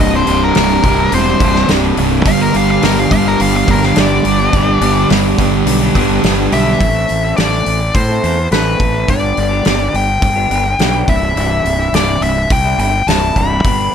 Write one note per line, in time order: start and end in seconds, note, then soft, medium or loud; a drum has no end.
0.00 0.22 C1 medium
0.00 0.41 C2 medium
0.00 0.25 G2 medium
0.00 0.13 C3 medium
0.00 0.13 G3 medium
0.00 0.12 D4 loud
0.00 0.13 D#5 medium
0.12 0.27 C3 medium
0.12 0.28 G3 medium
0.12 0.29 D4 medium
0.16 0.42 C5 medium
0.27 0.50 C1 medium
0.27 0.54 C2 medium
0.27 0.54 G2 medium
0.27 0.55 C3 medium
0.27 0.56 G3 medium
0.27 0.57 D4 medium
0.27 open hi-hat soft
0.44 1.12 A#4 medium
0.55 0.79 C1 loud
0.55 1.12 C2 loud
0.55 0.82 G2 loud
0.55 0.82 C3 loud
0.55 0.84 G3 loud
0.55 0.85 D4 loud
0.55 snare loud
0.55 open hi-hat medium
0.83 1.07 C1 medium
0.83 1.10 C2 medium
0.83 1.26 G2 medium
0.83 0.99 C3 medium
0.83 0.98 G3 medium
0.83 0.97 D4 medium
0.83 kick medium
0.83 open hi-hat medium
0.97 1.27 C3 soft
0.97 1.26 G3 medium
0.97 1.25 D4 medium
1.11 1.35 E1 loud
1.11 1.38 C2 loud
1.11 1.39 G2 loud
1.11 1.39 C3 loud
1.11 1.69 C5 loud
1.11 open hi-hat medium
1.25 1.39 C3 medium
1.25 1.41 G3 medium
1.25 1.42 D4 medium
1.39 1.63 C1 loud
1.39 1.67 C2 medium
1.39 1.67 G2 medium
1.39 1.55 C3 medium
1.39 1.55 G3 medium
1.39 1.53 D4 medium
1.39 kick medium
1.39 open hi-hat medium
1.54 1.68 C3 medium
1.54 1.69 G3 medium
1.54 1.70 D4 medium
1.54 snare soft
1.68 1.92 C1 medium
1.68 2.24 C2 medium
1.68 1.95 G2 medium
1.68 1.96 C3 medium
1.68 1.97 G3 medium
1.68 1.98 D4 loud
1.68 snare medium
1.68 open hi-hat medium
1.96 2.20 C1 medium
1.96 2.24 C2 medium
1.96 2.24 G2 medium
1.96 2.12 C3 medium
1.96 2.11 G3 medium
1.96 2.10 D4 medium
1.96 open hi-hat medium
2.10 2.25 C3 medium
2.10 2.26 G3 medium
2.10 2.27 D4 medium
2.25 2.49 G1 medium
2.25 2.82 G2 medium
2.25 2.69 D3 loud
2.25 2.41 G3 loud
2.25 2.41 B3 medium
2.25 2.40 D4 medium
2.25 2.39 G4 loud
2.25 2.41 F5 loud
2.25 kick loud
2.25 open hi-hat medium
2.39 2.53 G3 medium
2.39 2.54 B3 medium
2.39 2.55 D4 medium
2.39 2.56 G4 medium
2.39 2.55 A#4 medium
2.53 2.77 G1 medium
2.53 2.81 G2 medium
2.53 2.81 D3 medium
2.53 2.83 G3 medium
2.53 2.83 B3 medium
2.53 2.84 D4 medium
2.53 2.84 G4 medium
2.53 2.69 F5 medium
2.53 open hi-hat medium
2.71 2.84 F5 medium
2.82 3.06 G1 loud
2.82 3.95 G2 medium
2.82 3.40 D3 loud
2.82 3.10 G3 loud
2.82 3.11 B3 loud
2.82 3.11 D4 loud
2.82 3.13 G4 loud
2.82 2.97 A#4 loud
2.82 snare loud
2.82 open hi-hat medium
2.99 3.11 F5 medium
3.10 3.34 G1 medium
3.10 3.37 G2 medium
3.10 3.38 D3 loud
3.10 3.26 G3 medium
3.10 3.26 B3 medium
3.10 3.24 D4 medium
3.10 3.23 G4 medium
3.10 3.26 F5 medium
3.10 kick medium
3.10 open hi-hat medium
3.24 3.54 G3 medium
3.24 3.55 B3 medium
3.24 3.53 D4 medium
3.24 3.52 G4 medium
3.24 3.41 A#4 medium
3.39 3.63 G1 loud
3.39 3.66 G2 loud
3.39 3.66 D3 loud
3.39 3.66 G3 loud
3.39 3.54 F5 loud
3.39 open hi-hat medium
3.53 3.66 G3 medium
3.53 3.68 B3 medium
3.53 3.68 D4 medium
3.53 3.69 G4 medium
3.53 3.69 F5 loud
3.67 3.91 G1 loud
3.67 3.94 G2 loud
3.67 3.95 D3 medium
3.67 3.83 G3 medium
3.67 3.83 B3 medium
3.67 3.81 D4 loud
3.67 3.80 G4 medium
3.67 3.83 A#4 loud
3.67 kick medium
3.67 open hi-hat medium
3.82 3.95 G3 medium
3.82 3.96 B3 medium
3.82 3.96 D4 medium
3.82 3.97 G4 medium
3.82 4.00 F5 medium
3.82 snare soft
3.95 4.20 G1 medium
3.95 4.52 G2 medium
3.95 4.52 D3 loud
3.95 4.22 G3 medium
3.95 4.24 B3 medium
3.95 4.25 D4 loud
3.95 4.25 G4 loud
3.95 snare loud
3.95 open hi-hat medium
4.00 5.09 D5 loud
4.24 4.48 G1 medium
4.24 4.51 G2 medium
4.24 4.51 D3 loud
4.24 4.40 G3 medium
4.24 4.39 B3 medium
4.24 4.38 D4 medium
4.24 4.37 G4 medium
4.24 open hi-hat medium
4.38 4.53 G3 medium
4.38 4.53 B3 medium
4.38 4.54 D4 medium
4.38 4.54 G4 medium
4.53 4.76 G1 medium
4.53 4.96 G2 medium
4.53 4.96 D3 loud
4.53 4.69 G3 loud
4.53 4.68 B3 loud
4.53 4.67 D4 loud
4.53 4.66 G4 loud
4.53 kick loud
4.53 open hi-hat medium
4.67 4.80 G3 medium
4.67 4.81 B3 medium
4.67 4.82 D4 medium
4.67 4.83 G4 medium
4.81 5.04 G1 medium
4.81 5.09 G2 medium
4.81 5.09 D3 medium
4.81 5.09 G3 medium
4.81 5.10 B3 medium
4.81 5.10 D4 medium
4.81 5.11 G4 medium
4.81 open hi-hat medium
5.09 5.33 G1 loud
5.09 5.67 G2 loud
5.09 5.67 D3 loud
5.09 5.37 G3 loud
5.09 5.38 B3 loud
5.09 5.39 D4 loud
5.09 5.39 G4 loud
5.09 snare loud
5.09 open hi-hat medium
5.38 5.62 G1 medium
5.38 5.65 G2 medium
5.38 5.65 D3 medium
5.38 5.53 G3 medium
5.38 5.53 B3 medium
5.38 5.52 D4 medium
5.38 5.51 G4 medium
5.38 kick medium
5.38 open hi-hat medium
5.52 5.82 G3 medium
5.52 5.81 B3 medium
5.52 5.80 D4 medium
5.52 5.79 G4 medium
5.66 5.89 B1 medium
5.66 5.93 G2 loud
5.66 5.94 D3 loud
5.66 5.94 G3 loud
5.66 open hi-hat medium
5.80 5.93 G3 medium
5.80 5.94 B3 medium
5.80 5.95 D4 medium
5.80 5.96 G4 medium
5.94 6.18 G1 medium
5.94 6.22 G2 medium
5.94 6.22 D3 medium
5.94 6.10 G3 medium
5.94 6.09 B3 medium
5.94 6.08 D4 medium
5.94 6.07 G4 loud
5.94 kick medium
5.94 open hi-hat medium
6.08 6.22 G3 medium
6.08 6.23 B3 medium
6.08 6.23 D4 medium
6.08 6.24 G4 medium
6.22 6.47 G1 medium
6.22 6.78 G2 medium
6.22 6.79 D3 medium
6.22 6.50 G3 medium
6.22 6.51 B3 loud
6.22 6.52 D4 medium
6.22 6.53 G4 loud
6.22 snare loud
6.22 open hi-hat medium
6.51 6.75 B1 medium
6.51 6.79 G2 loud
6.51 6.79 D3 loud
6.51 6.67 G3 medium
6.51 6.66 B3 medium
6.51 6.65 D4 medium
6.51 6.64 G4 medium
6.51 7.36 E5 loud
6.51 open hi-hat medium
6.65 6.80 G3 medium
6.65 6.79 B3 medium
6.65 6.79 D4 medium
6.65 6.79 G4 medium
6.80 7.04 A1 medium
6.80 7.35 A2 medium
6.80 7.36 E3 medium
6.80 7.24 A3 medium
6.80 7.23 C4 medium
6.80 7.23 E4 medium
6.80 7.21 A4 medium
6.80 kick loud
6.80 open hi-hat medium
7.09 7.33 A1 medium
7.09 open hi-hat soft
7.23 7.37 A3 medium
7.23 7.37 C4 medium
7.23 7.38 E4 medium
7.23 7.38 A4 medium
7.37 7.61 A1 medium
7.37 7.80 A2 medium
7.37 7.80 E3 loud
7.37 7.53 A3 loud
7.37 7.52 C4 loud
7.37 7.51 E4 loud
7.37 7.50 A4 loud
7.37 7.96 D5 medium
7.37 snare loud
7.37 open hi-hat medium
7.51 7.80 A3 medium
7.51 7.80 C4 medium
7.51 7.79 E4 medium
7.51 7.79 A4 medium
7.66 7.89 A1 medium
7.66 open hi-hat medium
7.80 muted clean electric guitar stroke soft
7.95 8.18 A2 medium
7.95 8.48 C5 medium
7.95 kick loud
7.95 open hi-hat medium
8.09 8.22 A3 medium
8.09 8.23 C4 medium
8.09 8.23 E4 medium
8.09 8.24 A4 medium
8.23 8.46 E2 medium
8.23 8.37 A3 medium
8.23 8.37 C4 medium
8.23 8.37 E4 medium
8.23 8.36 A4 medium
8.23 open hi-hat soft
8.37 muted clean electric guitar stroke medium
8.51 8.75 A1 medium
8.51 9.07 A2 medium
8.51 9.07 E3 medium
8.51 8.78 A3 medium
8.51 8.79 C4 medium
8.51 8.80 E4 medium
8.51 8.81 A4 medium
8.51 9.11 B4 medium
8.51 snare medium
8.51 open hi-hat medium
8.79 9.03 A1 medium
8.79 8.95 A3 medium
8.79 8.94 C4 medium
8.79 8.94 E4 medium
8.79 8.93 A4 medium
8.79 kick medium
8.79 open hi-hat soft
8.94 9.08 A3 medium
8.94 9.08 C4 medium
8.94 9.07 E4 medium
8.94 9.07 A4 medium
9.08 9.32 G1 medium
9.08 9.63 G2 medium
9.08 9.64 D3 medium
9.08 9.53 G3 medium
9.08 9.51 B3 medium
9.08 9.50 D4 medium
9.08 9.50 G4 medium
9.08 9.97 D5 medium
9.08 kick loud
9.08 open hi-hat medium
9.37 9.60 G1 medium
9.37 open hi-hat soft
9.50 9.65 G3 medium
9.50 9.65 B3 medium
9.50 9.65 D4 medium
9.50 9.67 G4 medium
9.64 9.89 G1 medium
9.64 10.08 G2 loud
9.64 10.08 D3 loud
9.64 9.81 G3 medium
9.64 9.80 B3 loud
9.64 9.79 D4 medium
9.64 9.78 G4 loud
9.64 snare loud
9.64 open hi-hat medium
9.79 10.08 G3 medium
9.79 10.07 B3 medium
9.79 10.07 D4 medium
9.79 10.07 G4 medium
9.94 10.17 G1 medium
9.94 11.12 G5 medium
9.94 open hi-hat soft
10.08 muted clean electric guitar stroke soft
10.22 10.45 G1 medium
10.22 kick loud
10.22 open hi-hat medium
10.35 10.49 G3 medium
10.35 10.50 B3 medium
10.35 10.50 D4 medium
10.35 10.52 G4 medium
10.50 10.74 G1 medium
10.50 10.65 G3 medium
10.50 10.64 B3 medium
10.50 10.64 D4 medium
10.50 10.64 G4 medium
10.50 open hi-hat soft
10.65 muted clean electric guitar stroke medium
10.79 11.02 B1 medium
10.79 11.06 G2 medium
10.79 11.06 D3 medium
10.79 11.08 G3 medium
10.79 11.07 B3 medium
10.79 11.07 D4 loud
10.79 11.09 G4 loud
10.79 snare loud
10.79 open hi-hat medium
11.07 11.31 C1 medium
11.07 11.35 C2 medium
11.07 11.36 G2 medium
11.07 11.23 C3 medium
11.07 11.23 G3 medium
11.07 11.21 E4 medium
11.07 11.95 E5 medium
11.07 kick medium
11.07 open hi-hat soft
11.22 11.37 C3 medium
11.22 11.38 G3 medium
11.22 11.38 E4 medium
11.36 11.59 C1 medium
11.36 11.92 C2 medium
11.36 11.93 G2 medium
11.36 11.80 C3 loud
11.36 11.80 G3 loud
11.36 11.77 E4 loud
11.36 open hi-hat medium
11.65 11.88 C1 medium
11.65 open hi-hat soft
11.78 11.93 C3 medium
11.78 11.95 G3 medium
11.78 11.94 E4 medium
11.92 12.16 C1 medium
11.92 12.36 C2 medium
11.92 12.36 G2 medium
11.92 12.09 C3 medium
11.92 12.09 G3 medium
11.92 12.06 E4 loud
11.92 12.23 D5 loud
11.92 snare loud
11.92 open hi-hat medium
12.08 12.36 C3 medium
12.08 12.36 G3 medium
12.08 12.35 E4 medium
12.21 12.45 C1 medium
12.21 12.49 E5 medium
12.21 open hi-hat soft
12.36 muted clean electric guitar stroke soft
12.50 12.74 C2 medium
12.50 12.78 G5 loud
12.50 kick loud
12.50 open hi-hat medium
12.64 12.78 C3 medium
12.64 12.80 G3 medium
12.64 12.80 E4 medium
12.78 13.02 G1 medium
12.78 12.93 G2 medium
12.78 12.93 C3 medium
12.78 12.94 G3 medium
12.78 12.92 E4 medium
12.78 13.06 G5 medium
12.78 open hi-hat soft
12.94 muted clean electric guitar stroke medium
13.07 13.30 C1 medium
13.07 13.63 C2 medium
13.07 13.34 G2 medium
13.07 13.35 C3 loud
13.07 13.36 G3 loud
13.07 13.36 E4 loud
13.07 13.38 A5 loud
13.07 snare loud
13.07 open hi-hat medium
13.35 13.59 C1 medium
13.35 13.63 G2 medium
13.35 13.52 C3 medium
13.35 13.51 G3 medium
13.35 13.49 E4 medium
13.35 13.95 B5 loud
13.35 kick medium
13.35 open hi-hat soft
13.50 13.64 C3 medium
13.50 13.65 G3 medium
13.50 13.63 E4 medium
13.64 13.88 G1 medium
13.64 13.95 G2 medium
13.64 13.95 D3 loud
13.64 13.95 G3 medium
13.64 13.95 B3 medium
13.64 13.95 D4 loud
13.64 13.95 G4 loud
13.64 kick loud
13.64 open hi-hat medium